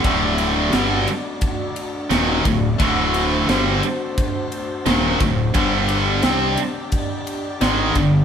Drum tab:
RD |xxxxxxxx|xxxxxxxx|xxxxxxxx|
SD |--o---o-|--o---o-|--o---o-|
BD |o---o--o|o---o--o|o---o--o|